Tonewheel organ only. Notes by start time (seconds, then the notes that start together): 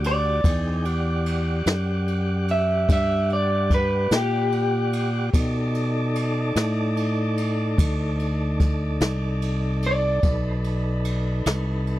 Already playing: F#4 G4 D5
0.44 D#4 G#4 G5
0.85 G4 D5 F#5
5.34 D#4 A4 D5
10.24 D#4 A4 B4